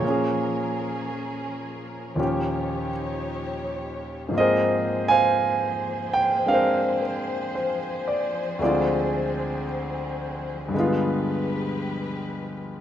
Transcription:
Already playing: string section F3 A#3 A#4, grand piano F4 C#5
0.00 grand piano A#2 F3
0.04 grand piano A#3 C#4, string section C#4 G#4
0.10 grand piano G#4
2.15 grand piano D#2 A#2 F3 A#3 C#4, string section F3 D#4 G4 C#5
2.20 grand piano G4
4.29 grand piano G#2 F3, string section F3 A#3 G#4 C5
4.34 grand piano A#3 C4 D#5
4.39 grand piano G#4 A#4 C5
5.08 grand piano C5 F5 G#5
6.13 grand piano G5
6.46 grand piano G#3 C4 D4 A#4 F5
6.53 grand piano A#4 C5
7.01 grand piano A#4
7.55 grand piano C5
8.08 grand piano D5
8.59 grand piano D2 D3 G#3 C4 D5, string section C4
8.64 grand piano F4 G#4
10.68 grand piano G2 D3
10.73 grand piano G#3 B3, string section G#3 G4 B4
10.79 grand piano F4

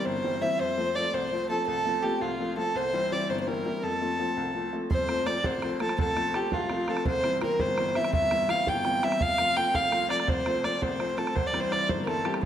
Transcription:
Already playing: upright piano E3 G3 C4
0.05 upright piano G1, fiddle C5
0.23 upright piano E3 G3 C4
0.41 upright piano E3 G3 C4, fiddle E5
0.59 upright piano F2, fiddle C5
0.77 upright piano F3 A3 C4
0.95 upright piano F3 A3 C4, fiddle D5
1.13 upright piano C2, fiddle C5
1.31 upright piano F3 A3 C4
1.49 upright piano F3 A3 C4, fiddle A4
1.67 upright piano C2, fiddle A4
1.85 upright piano F3 A3 C4
2.03 upright piano F3 A3 C4, fiddle G4
2.21 upright piano C2, fiddle F4
2.39 upright piano F3 A3 C4
2.57 upright piano F3 A3 C4, fiddle A4
2.75 upright piano C2, fiddle C5
2.93 upright piano E3 G3 C4
3.11 upright piano E3 G3 C4, fiddle D5
3.29 upright piano G1, fiddle C5
3.40 fiddle C5
3.47 upright piano E3 G3 C4, fiddle A#4
3.65 upright piano E3 G3 C4
3.83 upright piano F2, fiddle A4
4.01 upright piano F3 A3 C4
4.19 upright piano F3 A3 C4
4.37 upright piano C2
4.54 upright piano F3 A3 C4
4.72 upright piano F3 A3 C4
4.91 upright piano F2, fiddle C5, bodhran
5.08 upright piano F3 A3 C4, bodhran
5.26 upright piano F3 A3 C4, fiddle D5, bodhran
5.44 upright piano C2, fiddle C5, bodhran
5.62 upright piano F3 A3 C4, bodhran
5.80 upright piano F3 A3 C4, fiddle A4, bodhran
5.89 bodhran
5.98 upright piano C2, fiddle A4, bodhran
6.16 upright piano F3 A3 C4, bodhran
6.33 upright piano F3 A3 C4, fiddle G4, bodhran
6.52 upright piano C2, fiddle F4, bodhran
6.70 upright piano F3 A3 C4, bodhran
6.88 upright piano F3 A3 C4, fiddle A4, bodhran
6.97 bodhran
7.06 upright piano C2, fiddle C5, bodhran
7.23 upright piano E3 G3 C4, bodhran
7.41 upright piano E3 G3 C4, fiddle A#4, bodhran
7.59 upright piano G1, fiddle C5, bodhran
7.77 upright piano E3 G3 C4, bodhran
7.95 upright piano E3 G3 C4, fiddle E5, bodhran
8.04 bodhran
8.13 upright piano G1, fiddle E5, bodhran
8.31 upright piano E3 G3 C4, bodhran
8.48 upright piano E3 G3 C4, fiddle F5, bodhran
8.67 upright piano G1, fiddle G5, bodhran
8.84 upright piano E3 G3 C4, bodhran
9.02 upright piano E3 G3 C4, fiddle E5, bodhran
9.12 bodhran
9.20 upright piano F2, fiddle F5, bodhran
9.38 upright piano F3 A3 C4, bodhran
9.56 upright piano F3 A3 C4, fiddle G5, bodhran
9.74 upright piano C2, fiddle F5, bodhran
9.91 upright piano F3 A3 C4, bodhran
10.09 upright piano F3 A3 C4, fiddle D5, bodhran
10.20 fiddle D5, bodhran
10.27 upright piano C2, fiddle C5, bodhran
10.46 upright piano F3 A3 C4, bodhran
10.64 upright piano F3 A3 C4, fiddle D5, bodhran
10.81 upright piano C2, fiddle C5, bodhran
10.99 upright piano F3 A3 C4, bodhran
11.17 upright piano F3 A3 C4, fiddle A4, bodhran
11.27 bodhran
11.35 upright piano C2, fiddle C5, bodhran
11.47 fiddle D5
11.53 upright piano E3 G3 C4, bodhran
11.60 fiddle C5
11.71 upright piano E3 G3 C4, fiddle D5, bodhran
11.89 upright piano G1, fiddle C5, bodhran
12.04 upright piano E3 G3 C4, fiddle A4 A#4, bodhran
12.24 upright piano E3 G3 C4, fiddle G4, bodhran
12.34 bodhran

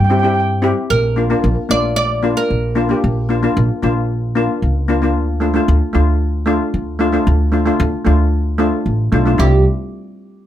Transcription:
Already playing: upright bass G2
0.04 steel pan G5
0.10 steel pan C4 E4 G4 G5
0.19 steel pan C4 G5
0.24 steel pan E4 G4 G5
0.34 steel pan G5
0.40 steel pan G5
0.62 steel pan C4 E4 G4
0.90 upright bass A#1, oud A#4
1.16 steel pan A#3 D4 F4
1.30 steel pan A#3 D4 F4
1.44 upright bass A#1
1.69 upright bass A#1, steel pan A#3 D4 F4, oud D5
1.96 oud D5
2.23 steel pan A#3 D4 F4
2.37 oud A#4
2.50 upright bass A#1
2.75 steel pan A#3 D4 F4
2.89 steel pan A#3 D4 G4
3.04 upright bass A#1
3.29 steel pan A#3 D4 F4
3.43 steel pan A#3 D4 F4
3.57 upright bass A#1
3.82 upright bass A#1, steel pan A#3 D4 F4
4.35 steel pan A#3 D4 F4
4.62 upright bass C#2
4.88 steel pan A#3 D4 F4
5.02 steel pan A#3 D4 F4
5.16 upright bass D2
5.40 steel pan A3 D4 F4
5.54 steel pan A3 D4 F4
5.68 upright bass D2
5.93 upright bass D2, steel pan A3 D4 F4
6.46 steel pan A3 D4 F4
6.74 upright bass D2
6.99 steel pan A3 D4 F4
7.12 steel pan A3 D4 F4
7.27 upright bass D2
7.52 steel pan A3 D4 F4
7.66 steel pan A3 D4 F4
7.80 upright bass D2
8.05 upright bass D2, steel pan A3 D4 F4
8.58 steel pan A3 D4 F4
8.86 upright bass A1
9.12 upright bass B1, steel pan A3 D4 F4
9.26 steel pan A3 D4 F4
9.38 upright bass C2, steel pan G3 C4 E4, oud G4

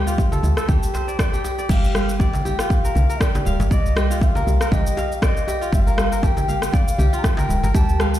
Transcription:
Already playing: fm bass D2, kora G4 A#4 D5 F5
0.07 kora F4, cabasa
0.18 kick, djembe tone, cabasa
0.32 kora A4, djembe slap, low conga, cabasa
0.42 fm bass D2, high conga, djembe tone, low conga, cabasa
0.57 kora A4, cross-stick, cabasa
0.68 fm bass D2, kora G4, kick, high conga, djembe tone, low conga, cabasa
0.83 cabasa
0.94 kora C5, djembe slap, djembe tone, cabasa
1.08 kora D5, cabasa
1.19 kora D5, kick, cross-stick, djembe tone, cabasa
1.33 kora G4, cabasa
1.44 kora G4, djembe slap, djembe tone, cabasa
1.58 kora D5, cabasa
1.69 fm bass G1, kora G4, bansuri F5, kick, crash, djembe tone, high conga, cabasa
1.84 cabasa
1.95 kora F5, cross-stick, high conga, djembe tone, cabasa
2.09 cabasa
2.19 kora D5, bansuri G5, kick, djembe tone, cabasa
2.33 djembe slap, low conga, cabasa
2.45 kora G4, djembe tone, high conga, low conga, cabasa
2.59 kora F4, cross-stick, cabasa
2.70 bansuri G5, kick, djembe tone, cabasa
2.75 bansuri F5
2.84 kora A#4, cabasa
2.95 fm bass C2, djembe tone, low conga, cabasa
3.09 kora A#4, cabasa
3.21 kora G4, bansuri D5, kick, cross-stick, djembe tone, cabasa
3.35 djembe slap, low conga, cabasa
3.45 fm bass D1, kora F5, high conga, djembe tone, cabasa
3.60 fm bass G1, djembe slap, cabasa
3.71 fm bass C2, kora D5, bansuri D#5, kick, djembe tone, high conga, cabasa
3.86 cabasa
3.96 kora G4, cross-stick, high conga, djembe tone, cabasa
4.10 kora F4, cabasa
4.21 bansuri F5, kick, djembe tone, cabasa
4.35 kora A#4, djembe slap, low conga, cabasa
4.47 fm bass C2, high conga, djembe tone, cabasa
4.61 kora A#4, cross-stick, cabasa
4.72 fm bass C2, kora G4, bansuri D#5, kick, high conga, djembe tone, low conga, cabasa
4.87 cabasa
4.97 kora F5, djembe slap, djembe tone, cabasa
5.12 cabasa
5.16 bansuri F5
5.22 kora D5, bansuri F5, kick, cross-stick, djembe tone, cabasa
5.27 bansuri D#5
5.37 cabasa
5.48 kora G4, djembe slap, djembe tone, cabasa
5.61 kora F4, cabasa
5.72 fm bass G1, bansuri F5, kick, high conga, djembe tone, cabasa
5.87 kora A#4, cabasa
5.98 cross-stick, djembe tone, high conga, cabasa
6.12 kora A#4, cabasa
6.23 kora G4, bansuri G5 A5, kick, djembe tone, cabasa
6.37 djembe slap, low conga, cabasa
6.48 kora F5, high conga, djembe tone, low conga, cabasa
6.62 cross-stick, cabasa
6.73 kora D5, bansuri F5, kick, djembe tone, cabasa
6.88 cabasa
6.98 fm bass C2, kora G4, djembe tone, low conga, cabasa
7.13 kora F4, cabasa
7.18 bansuri A#5
7.23 bansuri G5, kick, cross-stick, djembe tone, cabasa
7.37 kora A#4, djembe slap, low conga, cabasa
7.49 fm bass D1, high conga, djembe tone, cabasa
7.63 fm bass G1, kora A#4, djembe slap, cabasa
7.74 fm bass D2, kora G4, bansuri A5, kick, high conga, djembe tone, cabasa
7.89 cabasa
8.00 kora F5, cross-stick, high conga, djembe tone, cabasa
8.14 cabasa

